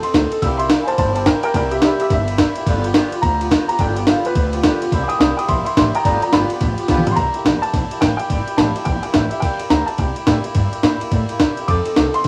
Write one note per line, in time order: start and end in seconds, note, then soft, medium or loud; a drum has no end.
0.02 0.15 D#4 medium
0.02 0.14 A4 medium
0.02 0.30 C6 medium
0.02 muted upright bass stroke medium
0.02 ride medium
0.07 0.14 C4 medium
0.14 0.29 D2 medium
0.14 0.32 F3 medium
0.14 0.32 C4 medium
0.14 0.32 D#4 medium
0.14 0.31 A4 medium
0.14 kick medium
0.14 snare loud
0.14 ride medium
0.31 0.43 D#4 soft
0.31 0.43 A4 medium
0.31 muted upright bass stroke medium
0.31 ride medium
0.35 0.44 C4 soft
0.42 0.74 C2 medium
0.42 0.60 C3 medium
0.42 0.60 G3 medium
0.42 0.60 A#3 medium
0.42 0.60 E4 medium
0.42 0.58 G4 loud
0.42 0.59 E6 medium
0.42 kick loud
0.42 ride medium
0.57 0.70 G4 medium
0.57 0.68 E5 medium
0.57 0.69 C6 loud
0.57 ride medium
0.61 0.71 A#3 soft
0.61 0.71 E4 medium
0.69 0.88 C3 medium
0.69 0.88 G3 medium
0.69 0.88 A#3 medium
0.69 0.89 E4 medium
0.69 0.88 G4 medium
0.69 snare loud
0.69 ride loud
0.84 0.96 C5 medium
0.84 0.85 G#5 medium
0.84 muted upright bass stroke medium
0.88 0.99 A#3 soft
0.88 1.00 E4 soft
0.88 0.99 G4 medium
0.88 0.97 A5 loud
0.88 ride medium
0.98 1.30 G1 medium
0.98 1.16 G3 medium
0.98 1.17 A#3 medium
0.98 1.17 E4 medium
0.98 1.15 G4 medium
0.98 1.13 C5 medium
0.98 1.14 A5 medium
0.98 kick loud
0.98 ride loud
1.15 1.28 E4 medium
1.15 1.27 G4 medium
1.15 1.25 C5 medium
1.15 1.26 A5 medium
1.15 ride medium
1.19 1.27 A#3 soft
1.26 1.44 C3 medium
1.26 1.45 G3 medium
1.26 1.45 A#3 medium
1.26 1.44 E4 medium
1.26 1.43 G4 loud
1.26 1.42 A#4 medium
1.26 1.42 G5 medium
1.26 kick medium
1.26 snare loud
1.26 ride medium
1.43 1.55 A#3 medium
1.43 1.55 E4 soft
1.43 1.55 G4 medium
1.43 1.53 A#4 medium
1.43 1.54 G5 loud
1.43 muted upright bass stroke medium
1.43 ride medium
1.54 1.86 C2 loud
1.54 1.72 C3 medium
1.54 1.72 G3 medium
1.54 1.73 A#3 medium
1.54 1.73 E4 medium
1.54 1.71 G4 medium
1.54 1.71 A#4 medium
1.54 1.72 G5 medium
1.54 kick loud
1.54 ride medium
1.71 1.82 A#3 medium
1.71 1.83 E4 medium
1.71 1.82 G4 medium
1.71 1.83 G4 medium
1.71 1.83 E5 medium
1.71 ride medium
1.82 2.00 C3 medium
1.82 2.00 G3 medium
1.82 2.01 A#3 loud
1.82 1.99 E4 loud
1.82 1.99 G4 medium
1.82 1.98 G4 medium
1.82 2.00 E5 medium
1.82 snare loud
1.82 ride medium
1.99 2.10 A#3 soft
1.99 2.11 E4 soft
1.99 2.11 G4 medium
1.99 2.10 E5 medium
1.99 muted upright bass stroke medium
1.99 ride medium
2.10 2.42 G1 medium
2.10 2.28 G3 medium
2.10 2.29 A#3 medium
2.10 2.29 E4 medium
2.10 2.28 G4 medium
2.10 2.66 E5 loud
2.10 kick loud
2.10 snare soft
2.10 ride medium
2.28 2.39 A#3 soft
2.28 2.39 E4 medium
2.28 2.40 G4 medium
2.28 ride medium
2.38 2.57 C3 medium
2.38 2.57 G3 medium
2.38 2.57 A#3 medium
2.38 2.56 E4 medium
2.38 2.55 G4 medium
2.38 kick medium
2.38 snare loud
2.38 ride medium
2.56 2.68 A#3 medium
2.56 2.68 E4 medium
2.56 2.68 G4 medium
2.56 muted upright bass stroke medium
2.56 ride medium
2.66 2.99 G1 medium
2.66 2.85 G2 medium
2.66 2.85 D3 loud
2.66 2.85 F3 medium
2.66 2.85 B3 medium
2.66 2.84 F4 loud
2.66 2.83 G4 loud
2.66 kick loud
2.66 ride medium
2.84 2.95 F3 medium
2.84 2.95 B3 medium
2.84 2.96 F4 medium
2.84 2.96 G4 medium
2.84 ride medium
2.94 3.13 G2 medium
2.94 3.13 D3 loud
2.94 3.13 F3 medium
2.94 3.13 B3 loud
2.94 3.12 F4 loud
2.94 3.11 G4 loud
2.94 snare loud
2.94 ride medium
3.12 3.21 F3 medium
3.12 3.22 B3 medium
3.12 3.22 F4 medium
3.12 3.24 G4 medium
3.12 muted upright bass stroke medium
3.12 ride medium
3.22 3.55 D2 medium
3.22 3.40 F3 medium
3.22 3.41 B3 medium
3.22 3.40 F4 medium
3.22 3.39 G4 medium
3.22 3.67 A#5 loud
3.22 kick loud
3.22 ride medium
3.40 3.51 F3 soft
3.40 3.51 B3 medium
3.40 3.51 F4 medium
3.40 3.52 G4 medium
3.40 ride medium
3.51 3.69 G2 medium
3.51 3.69 D3 medium
3.51 3.70 F3 medium
3.51 3.69 B3 loud
3.51 3.68 F4 medium
3.51 3.67 G4 medium
3.51 kick medium
3.51 snare loud
3.51 ride medium
3.68 3.78 F3 soft
3.68 3.78 B3 medium
3.68 3.79 F4 medium
3.68 3.79 G4 medium
3.68 3.79 A#5 loud
3.68 muted upright bass stroke medium
3.68 ride medium
3.78 4.11 G1 medium
3.78 3.97 G2 medium
3.78 3.97 D3 medium
3.78 3.97 F3 medium
3.78 3.97 B3 medium
3.78 3.95 F4 medium
3.78 3.94 G4 loud
3.78 4.08 G5 medium
3.78 kick loud
3.78 ride medium
3.95 4.07 F3 medium
3.95 4.07 B3 medium
3.95 4.08 F4 soft
3.95 4.07 G4 medium
3.95 ride medium
4.07 4.25 G2 medium
4.07 4.26 D3 medium
4.07 4.26 F3 loud
4.07 4.25 B3 medium
4.07 4.24 F4 loud
4.07 4.23 G4 loud
4.07 4.26 F5 medium
4.07 snare loud
4.07 ride medium
4.25 4.34 F3 soft
4.25 4.36 B3 soft
4.25 4.36 F4 medium
4.25 4.36 G4 medium
4.25 4.81 B4 loud
4.25 muted upright bass stroke medium
4.25 ride medium
4.35 4.67 D2 medium
4.35 4.53 F3 medium
4.35 4.54 B3 medium
4.35 4.53 F4 medium
4.35 4.52 G4 medium
4.35 kick loud
4.35 ride medium
4.53 4.64 F3 soft
4.53 4.64 B3 soft
4.53 4.64 F4 medium
4.53 4.64 G4 medium
4.53 ride medium
4.63 4.82 G2 medium
4.63 4.82 D3 medium
4.63 4.82 F3 medium
4.63 4.82 B3 medium
4.63 4.81 F4 medium
4.63 4.80 G4 loud
4.63 kick medium
4.63 snare loud
4.63 ride medium
4.80 4.92 F3 medium
4.80 4.93 B3 medium
4.80 4.93 F4 medium
4.80 4.93 G4 medium
4.80 muted upright bass stroke medium
4.80 ride medium
4.92 5.04 C2 loud
4.92 5.10 C3 medium
4.92 5.10 G3 loud
4.92 5.11 A#3 medium
4.92 5.09 E4 loud
4.92 5.08 G4 medium
4.92 kick loud
4.92 ride medium
5.03 5.06 D6 medium
5.08 5.21 E4 medium
5.08 5.20 G4 medium
5.08 5.18 G5 medium
5.08 5.19 D#6 loud
5.08 ride medium
5.12 5.21 A#3 medium
5.19 5.35 C2 loud
5.19 5.38 C3 medium
5.19 5.38 G3 medium
5.19 5.39 A#3 medium
5.19 5.38 E4 medium
5.19 5.36 G4 medium
5.19 5.36 G5 medium
5.19 5.37 D#6 medium
5.19 snare loud
5.19 ride medium
5.37 5.48 A#3 medium
5.37 5.49 E4 soft
5.37 5.49 G4 medium
5.37 5.48 G5 medium
5.37 5.49 D#6 medium
5.37 ride medium
5.48 5.63 A#1 medium
5.48 5.66 G3 medium
5.48 5.67 A#3 medium
5.48 5.66 E4 medium
5.48 5.65 G4 medium
5.48 5.63 E5 medium
5.48 5.64 C6 loud
5.48 kick loud
5.48 ride medium
5.64 5.77 E4 medium
5.64 5.77 G4 medium
5.64 5.75 E5 medium
5.64 5.76 C6 medium
5.64 muted upright bass stroke medium
5.64 ride medium
5.69 5.76 A#3 soft
5.77 5.92 A1 medium
5.77 5.94 C3 medium
5.77 5.95 G3 medium
5.77 5.95 A#3 medium
5.77 5.95 E4 medium
5.77 5.93 G4 medium
5.77 5.94 E5 medium
5.77 5.94 C6 loud
5.77 kick medium
5.77 snare loud
5.77 ride medium
5.94 6.07 A#3 soft
5.94 6.06 E4 medium
5.94 6.05 G4 medium
5.94 6.05 G5 loud
5.94 6.04 A#5 loud
5.94 muted upright bass stroke medium
5.94 ride medium
6.05 6.17 G1 medium
6.05 6.23 G2 medium
6.05 6.23 D3 medium
6.05 6.23 F3 medium
6.05 6.24 B3 medium
6.05 6.23 F4 medium
6.05 6.22 G4 loud
6.05 6.21 D5 medium
6.05 6.21 A#5 medium
6.05 kick loud
6.05 ride medium
6.22 6.34 B3 medium
6.22 6.34 F4 medium
6.22 6.34 G4 medium
6.22 6.31 D5 medium
6.22 6.33 A#5 medium
6.22 muted upright bass stroke medium
6.22 ride medium
6.26 6.33 F3 soft
6.32 6.48 G1 loud
6.32 6.51 G2 medium
6.32 6.51 D3 medium
6.32 6.52 F3 medium
6.32 6.52 B3 medium
6.32 6.51 F4 loud
6.32 6.50 G4 loud
6.32 7.13 D5 medium
6.32 7.15 B5 loud
6.32 snare loud
6.32 ride medium
6.50 6.62 B3 soft
6.50 6.62 F4 medium
6.50 6.62 G4 medium
6.50 ride medium
6.54 6.60 F3 soft
6.61 6.76 A1 medium
6.61 6.79 F3 medium
6.61 6.80 B3 medium
6.61 6.79 F4 medium
6.61 kick loud
6.61 snare soft
6.61 ride medium
6.65 6.78 G4 medium
6.78 6.89 B3 medium
6.78 6.89 F4 medium
6.78 6.89 G4 medium
6.78 muted upright bass stroke medium
6.78 ride medium
6.82 6.89 F3 soft
6.88 7.04 B1 medium
6.88 7.07 G2 medium
6.88 7.07 D3 medium
6.88 7.07 F3 loud
6.88 7.07 B3 loud
6.88 7.06 F4 medium
6.88 7.05 G4 loud
6.88 kick medium
6.88 snare medium
6.88 ride medium
6.98 mid tom medium
7.06 7.18 F3 medium
7.06 7.18 B3 medium
7.06 7.18 F4 medium
7.06 7.17 G4 medium
7.06 floor tom loud
7.06 ride medium
7.11 7.17 C6 medium
7.16 7.33 C2 medium
7.16 7.35 C3 medium
7.16 7.35 G3 medium
7.16 7.36 A#3 medium
7.16 7.35 E4 medium
7.16 7.34 G4 medium
7.16 7.59 A#5 loud
7.16 kick loud
7.16 ride medium
7.34 7.46 E4 soft
7.34 7.46 G4 medium
7.34 muted upright bass stroke medium
7.34 ride medium
7.38 7.46 A#3 soft
7.45 7.62 A#1 loud
7.45 7.63 C3 medium
7.45 7.64 G3 medium
7.45 7.64 A#3 medium
7.45 7.64 E4 medium
7.45 7.62 G4 loud
7.45 snare loud
7.45 ride medium
7.62 7.74 E4 soft
7.62 7.74 G4 medium
7.62 8.03 A5 loud
7.62 muted upright bass stroke medium
7.62 ride medium
7.66 7.74 A#3 soft
7.73 7.89 A#1 medium
7.73 7.91 G3 medium
7.73 7.92 A#3 medium
7.73 7.91 E4 medium
7.73 7.90 G4 medium
7.73 kick loud
7.73 snare soft
7.73 ride medium
7.90 8.03 E4 medium
7.90 8.02 G4 medium
7.90 muted upright bass stroke medium
7.90 ride medium
7.94 8.03 A#3 soft
8.01 8.17 A1 medium
8.01 8.20 C3 medium
8.01 8.20 G3 medium
8.01 8.21 A#3 medium
8.01 8.20 E4 medium
8.01 8.19 G4 medium
8.01 8.16 G5 loud
8.01 kick medium
8.01 snare loud
8.01 ride medium
8.17 8.31 G4 medium
8.17 8.59 G5 loud
8.17 muted upright bass stroke medium
8.17 ride medium
8.21 8.30 A#3 soft
8.21 8.31 E4 medium
8.29 8.45 G1 medium
8.29 8.48 C3 medium
8.29 8.48 G3 medium
8.29 8.48 A#3 medium
8.29 8.48 E4 medium
8.29 8.47 G4 medium
8.29 kick loud
8.29 ride medium
8.46 8.59 E4 soft
8.46 8.59 G4 medium
8.46 muted upright bass stroke medium
8.46 ride medium
8.51 8.58 A#3 medium
8.57 8.74 A1 loud
8.57 8.76 C3 medium
8.57 8.77 G3 medium
8.57 8.77 A#3 medium
8.57 8.76 E4 medium
8.57 8.75 G4 loud
8.57 8.87 A5 medium
8.57 snare loud
8.57 ride medium
8.75 8.87 A#3 soft
8.75 8.88 E4 medium
8.75 8.87 G4 medium
8.75 muted upright bass stroke medium
8.75 ride medium
8.85 9.03 A#1 medium
8.85 9.04 G3 medium
8.85 9.05 A#3 medium
8.85 9.04 E4 medium
8.85 9.01 G5 loud
8.85 kick loud
8.85 ride medium
8.89 9.03 G4 medium
9.03 9.15 E4 soft
9.03 9.15 G4 medium
9.03 9.15 G5 medium
9.03 muted upright bass stroke medium
9.03 ride medium
9.07 9.15 A#3 soft
9.13 9.31 A1 loud
9.13 9.33 C3 medium
9.13 9.33 G3 medium
9.13 9.33 A#3 medium
9.13 9.28 E5 medium
9.13 kick medium
9.13 snare loud
9.13 ride medium
9.17 9.32 E4 medium
9.17 9.31 G4 medium
9.30 9.43 E4 medium
9.30 9.43 G4 medium
9.30 9.42 E5 medium
9.30 muted upright bass stroke medium
9.30 ride medium
9.35 9.43 A#3 soft
9.40 9.59 G1 medium
9.40 9.60 C3 medium
9.40 9.61 G3 medium
9.40 9.61 A#3 medium
9.40 9.71 G5 medium
9.40 kick loud
9.40 ride medium
9.44 9.60 E4 medium
9.44 9.59 G4 medium
9.59 9.71 A#3 soft
9.59 9.71 E4 medium
9.59 9.71 G4 medium
9.59 muted upright bass stroke soft
9.59 ride medium
9.70 9.87 D2 loud
9.70 9.89 C3 medium
9.70 9.89 G3 medium
9.70 9.89 A#3 medium
9.70 9.89 E4 medium
9.70 9.88 G4 medium
9.70 9.89 A#5 medium
9.70 snare loud
9.70 ride medium
9.86 10.00 G4 medium
9.86 9.99 A5 loud
9.86 muted upright bass stroke medium
9.86 ride medium
9.90 9.99 A#3 soft
9.90 10.00 E4 soft
9.98 10.16 C2 medium
9.98 10.17 G3 medium
9.98 10.17 A#3 medium
9.98 10.17 E4 medium
9.98 10.15 G4 medium
9.98 10.26 G5 medium
9.98 kick loud
9.98 ride medium
10.16 10.27 A#3 soft
10.16 10.27 E4 soft
10.16 10.28 G4 medium
10.16 muted upright bass stroke medium
10.16 ride medium
10.27 10.43 A2 medium
10.27 10.45 C3 medium
10.27 10.45 G3 medium
10.27 10.46 A#3 medium
10.27 10.45 E4 medium
10.27 10.43 G4 medium
10.27 10.80 G5 medium
10.27 kick medium
10.27 snare loud
10.27 ride medium
10.44 10.55 A#3 soft
10.44 10.55 E4 medium
10.44 10.56 G4 medium
10.44 ride medium
10.55 10.72 G2 medium
10.55 10.73 C3 medium
10.55 10.73 G3 medium
10.55 10.74 A#3 medium
10.55 10.73 E4 medium
10.55 10.71 G4 medium
10.55 kick loud
10.55 ride medium
10.72 10.83 A#3 soft
10.72 10.83 E4 medium
10.72 10.84 G4 medium
10.72 ride medium
10.83 11.01 A#2 loud
10.83 11.01 C3 medium
10.83 11.01 G3 medium
10.83 11.02 A#3 loud
10.83 11.01 E4 loud
10.83 10.99 G4 loud
10.83 snare loud
10.83 ride medium
11.01 11.12 A#3 soft
11.01 11.13 E4 medium
11.01 11.12 G4 medium
11.01 muted upright bass stroke medium
11.01 ride medium
11.12 11.29 A2 medium
11.12 11.30 G3 medium
11.12 11.30 A#3 medium
11.12 11.30 E4 medium
11.12 11.27 G4 medium
11.12 kick loud
11.12 ride medium
11.29 11.40 A#3 medium
11.29 11.40 E4 medium
11.29 11.40 G4 medium
11.29 ride medium
11.40 11.56 G2 loud
11.40 11.58 C3 medium
11.40 11.58 G3 loud
11.40 11.58 A#3 medium
11.40 11.59 E4 loud
11.40 11.57 G4 loud
11.40 kick medium
11.40 snare loud
11.40 ride medium
11.57 11.69 A#3 medium
11.57 11.69 E4 medium
11.57 11.69 G4 medium
11.57 muted upright bass stroke soft
11.57 ride medium
11.68 11.85 F2 medium
11.68 11.86 F3 medium
11.68 11.87 C4 medium
11.68 11.86 D#4 medium
11.68 11.85 A4 medium
11.68 12.15 D6 loud
11.68 kick loud
11.68 ride medium
11.85 11.97 C4 soft
11.85 11.97 D#4 soft
11.85 11.97 A4 medium
11.85 ride medium
11.96 12.14 C2 loud
11.96 12.15 F3 medium
11.96 12.15 C4 medium
11.96 12.15 D#4 medium
11.96 12.13 A4 medium
11.96 snare loud
11.96 ride medium
12.14 12.25 C4 soft
12.14 12.26 D#4 soft
12.14 12.25 A4 medium
12.14 12.28 C6 loud
12.14 ride medium
12.24 12.28 A1 medium
12.24 12.28 F3 medium
12.24 kick loud
12.24 snare soft
12.24 ride medium